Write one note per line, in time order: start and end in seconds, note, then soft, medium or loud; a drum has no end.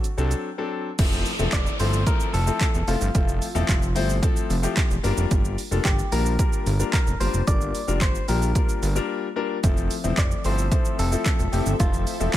0.00 0.41 F#4 medium
0.04 closed hi-hat medium
0.04 shaker medium
0.17 0.34 C2 loud
0.17 0.47 F#3 medium
0.17 0.48 C4 medium
0.17 0.48 D4 medium
0.17 0.48 A4 loud
0.17 shaker medium
0.31 closed hi-hat medium
0.31 shaker medium
0.58 0.88 F#3 medium
0.58 0.88 C4 medium
0.58 0.88 D4 medium
0.58 0.88 A4 medium
0.99 1.24 F1 loud
0.99 1.29 F3 medium
0.99 1.29 A3 medium
0.99 1.29 C4 medium
0.99 1.29 E4 medium
0.99 1.29 A4 medium
0.99 kick loud
0.99 closed hi-hat medium
0.99 crash loud
0.99 downlifter medium
0.99 shaker medium
1.12 shaker soft
1.26 open hi-hat medium
1.26 shaker medium
1.39 1.48 E1 medium
1.39 1.69 F3 medium
1.39 1.69 A3 medium
1.39 1.69 C4 medium
1.39 1.69 E4 medium
1.39 1.69 A4 medium
1.39 shaker medium
1.53 1.69 F1 medium
1.53 1.79 D5 loud
1.53 kick loud
1.53 clap loud
1.53 closed hi-hat medium
1.53 shaker medium
1.66 shaker medium
1.79 2.05 G1 medium
1.79 1.99 F3 medium
1.79 2.00 A3 medium
1.79 2.00 C4 medium
1.79 2.00 E4 medium
1.79 2.00 A4 medium
1.79 2.07 C5 loud
1.79 open hi-hat medium
1.79 shaker medium
1.93 shaker medium
2.07 2.37 F3 medium
2.07 2.37 A3 medium
2.07 2.37 C4 medium
2.07 2.37 E4 medium
2.07 2.37 A4 medium
2.07 2.33 A#4 loud
2.07 kick loud
2.07 closed hi-hat medium
2.07 shaker medium
2.20 shaker medium
2.34 2.51 F1 loud
2.34 2.89 A4 loud
2.34 open hi-hat medium
2.34 shaker medium
2.47 2.77 F3 medium
2.47 2.77 A3 medium
2.47 2.77 C4 medium
2.47 2.77 E4 medium
2.47 2.77 A4 medium
2.47 shaker medium
2.61 kick loud
2.61 clap loud
2.61 closed hi-hat medium
2.61 shaker medium
2.74 2.83 E1 medium
2.74 shaker soft
2.87 2.96 F1 loud
2.87 3.08 F3 medium
2.87 3.08 A3 medium
2.87 3.08 C4 medium
2.87 3.08 E4 medium
2.87 4.73 F4 medium
2.87 3.08 A4 medium
2.87 open hi-hat medium
2.87 shaker soft
3.01 3.10 G1 loud
3.01 shaker medium
3.14 3.40 F1 loud
3.14 3.44 F3 medium
3.14 3.45 A3 medium
3.14 3.45 C4 medium
3.14 3.45 E4 medium
3.14 3.45 A4 medium
3.14 kick loud
3.14 closed hi-hat medium
3.14 shaker medium
3.28 shaker soft
3.42 open hi-hat medium
3.42 shaker medium
3.55 3.64 E1 medium
3.55 3.85 F3 medium
3.55 3.85 A3 medium
3.55 3.85 C4 medium
3.55 3.85 E4 medium
3.55 3.85 A4 loud
3.55 shaker medium
3.69 3.97 F1 loud
3.69 kick loud
3.69 clap loud
3.69 closed hi-hat medium
3.69 shaker medium
3.82 shaker medium
3.95 4.21 G1 medium
3.95 4.16 F3 loud
3.95 4.16 A3 medium
3.95 4.16 C4 medium
3.95 4.16 E4 medium
3.95 4.16 C5 loud
3.95 open hi-hat medium
3.95 shaker medium
4.09 shaker medium
4.22 4.53 F3 medium
4.22 4.53 A3 medium
4.22 4.53 C4 medium
4.22 4.53 E4 medium
4.22 4.53 A4 loud
4.22 kick loud
4.22 closed hi-hat medium
4.22 shaker medium
4.36 shaker medium
4.50 4.67 F1 loud
4.50 open hi-hat medium
4.50 shaker medium
4.63 4.93 F3 medium
4.63 4.93 A3 medium
4.63 4.93 C4 medium
4.63 4.93 E4 medium
4.63 4.93 G4 loud
4.63 shaker medium
4.77 kick loud
4.77 clap loud
4.77 closed hi-hat medium
4.77 shaker medium
4.90 4.99 E1 medium
4.90 shaker soft
5.03 5.12 G1 loud
5.03 5.58 G3 loud
5.03 5.58 A#3 medium
5.03 5.58 D4 medium
5.03 5.58 F4 medium
5.03 5.58 A#4 loud
5.03 open hi-hat medium
5.03 shaker soft
5.17 5.26 F1 loud
5.17 shaker medium
5.31 5.56 G1 loud
5.31 kick loud
5.31 closed hi-hat medium
5.31 shaker medium
5.45 shaker soft
5.58 open hi-hat medium
5.58 shaker medium
5.71 5.80 F1 medium
5.71 6.01 G3 medium
5.71 6.01 A#3 medium
5.71 6.01 D4 medium
5.71 6.01 F4 medium
5.71 6.02 A4 medium
5.71 shaker medium
5.85 6.02 G1 medium
5.85 6.13 G4 medium
5.85 kick loud
5.85 clap loud
5.85 closed hi-hat medium
5.85 shaker medium
5.99 shaker medium
6.12 6.37 A#1 medium
6.12 6.32 G3 medium
6.12 6.32 A#3 medium
6.12 6.32 D4 medium
6.12 6.32 F4 medium
6.12 6.32 A#4 medium
6.12 6.89 A#4 loud
6.12 open hi-hat medium
6.12 shaker medium
6.26 shaker medium
6.39 6.69 G3 medium
6.39 6.69 A#3 medium
6.39 6.69 D4 medium
6.39 6.69 F4 medium
6.39 6.69 A#4 medium
6.39 kick loud
6.39 closed hi-hat medium
6.39 shaker medium
6.53 shaker medium
6.66 6.83 G1 loud
6.66 open hi-hat medium
6.66 shaker medium
6.79 7.09 G3 medium
6.79 7.10 A#3 medium
6.79 7.10 D4 medium
6.79 7.10 F4 medium
6.79 7.10 A#4 medium
6.79 shaker medium
6.93 7.20 A#4 loud
6.93 kick loud
6.93 clap loud
6.93 closed hi-hat medium
6.93 shaker medium
7.07 7.15 F1 loud
7.07 shaker soft
7.20 7.29 G1 medium
7.20 7.40 G3 medium
7.20 7.40 A#3 medium
7.20 7.40 D4 medium
7.20 7.40 F4 medium
7.20 7.40 A#4 medium
7.20 7.46 C5 loud
7.20 open hi-hat medium
7.20 shaker soft
7.34 7.42 F1 medium
7.34 shaker medium
7.47 7.73 G1 loud
7.47 7.77 G3 medium
7.47 7.77 A#3 medium
7.47 7.77 D4 medium
7.47 7.77 F4 medium
7.47 7.77 A#4 medium
7.47 8.01 D5 loud
7.47 kick loud
7.47 closed hi-hat medium
7.47 shaker medium
7.61 shaker medium
7.75 open hi-hat medium
7.75 shaker medium
7.88 8.03 F1 medium
7.88 8.18 G3 medium
7.88 8.18 A#3 medium
7.88 8.18 D4 medium
7.88 8.18 F4 medium
7.88 8.18 A#4 medium
7.88 shaker medium
8.01 8.18 G1 medium
8.01 8.27 C5 loud
8.01 kick loud
8.01 clap loud
8.01 closed hi-hat medium
8.01 shaker medium
8.15 shaker soft
8.28 8.54 A#1 loud
8.28 8.48 G3 medium
8.28 8.48 A#3 medium
8.28 8.48 D4 medium
8.28 8.48 F4 medium
8.28 8.48 G4 medium
8.28 9.06 A#4 medium
8.28 open hi-hat medium
8.28 shaker medium
8.42 shaker medium
8.55 8.85 G3 medium
8.55 8.85 A#3 medium
8.55 8.85 D4 medium
8.55 8.85 F4 medium
8.55 8.85 A#4 medium
8.55 kick loud
8.55 closed hi-hat medium
8.55 shaker medium
8.69 shaker medium
8.83 8.99 G1 loud
8.83 open hi-hat medium
8.83 shaker medium
8.95 9.26 G3 medium
8.95 9.26 A#3 medium
8.95 9.26 D4 medium
8.95 9.26 F4 medium
8.95 9.26 A#4 loud
8.95 shaker medium
9.36 9.56 G3 medium
9.36 9.56 A#3 medium
9.36 9.56 D4 medium
9.36 9.56 F4 medium
9.36 9.56 A#4 loud
9.63 9.89 F1 loud
9.63 9.93 F3 medium
9.63 12.37 F3 medium
9.63 9.93 A3 medium
9.63 9.93 C4 medium
9.63 12.37 C4 medium
9.63 9.93 E4 medium
9.63 9.93 A4 medium
9.63 12.37 A4 medium
9.63 12.37 E5 medium
9.63 kick loud
9.63 closed hi-hat medium
9.63 shaker medium
9.77 shaker medium
9.91 open hi-hat medium
9.91 shaker medium
10.04 10.13 E1 medium
10.04 10.34 F3 medium
10.04 10.34 A3 medium
10.04 10.34 C4 medium
10.04 10.34 E4 medium
10.04 10.34 C5 medium
10.04 shaker medium
10.18 10.34 F1 medium
10.18 10.45 D5 loud
10.18 kick loud
10.18 clap loud
10.18 closed hi-hat medium
10.18 shaker medium
10.31 shaker medium
10.44 10.70 G1 medium
10.44 10.64 F3 medium
10.44 10.64 A3 medium
10.44 10.65 C4 medium
10.44 10.65 E4 medium
10.44 10.65 A4 medium
10.44 10.99 C5 loud
10.44 open hi-hat medium
10.44 shaker medium
10.58 shaker medium
10.71 11.01 F3 medium
10.71 11.01 A3 medium
10.71 11.02 C4 medium
10.71 11.02 E4 medium
10.71 11.02 A4 medium
10.71 kick loud
10.71 closed hi-hat medium
10.71 shaker medium
10.85 shaker medium
10.99 11.16 F1 loud
10.99 11.83 A4 loud
10.99 open hi-hat medium
10.99 shaker medium
11.12 11.42 F3 medium
11.12 11.42 A3 medium
11.12 11.42 C4 medium
11.12 11.42 E4 medium
11.12 11.42 A4 medium
11.12 shaker medium
11.26 kick loud
11.26 clap loud
11.26 closed hi-hat medium
11.26 shaker medium
11.39 11.48 E1 medium
11.39 shaker soft
11.52 11.61 F1 loud
11.52 11.72 F3 medium
11.52 11.72 A3 medium
11.52 11.73 C4 medium
11.52 11.73 E4 medium
11.52 11.73 G4 medium
11.52 open hi-hat medium
11.52 shaker soft
11.66 11.75 G1 loud
11.66 shaker medium
11.79 12.05 F1 loud
11.79 12.09 F3 medium
11.79 12.10 A3 medium
11.79 12.10 C4 medium
11.79 12.10 E4 medium
11.79 12.37 F4 medium
11.79 12.10 A4 medium
11.79 kick loud
11.79 closed hi-hat medium
11.79 shaker medium
11.93 shaker soft
12.07 open hi-hat medium
12.07 shaker medium
12.20 12.29 E1 medium
12.20 12.37 F3 medium
12.20 12.37 A3 medium
12.20 12.37 C4 medium
12.20 12.37 E4 medium
12.20 12.37 A4 medium
12.20 shaker medium
12.34 12.37 F1 loud
12.34 kick loud
12.34 clap loud
12.34 closed hi-hat medium
12.34 shaker medium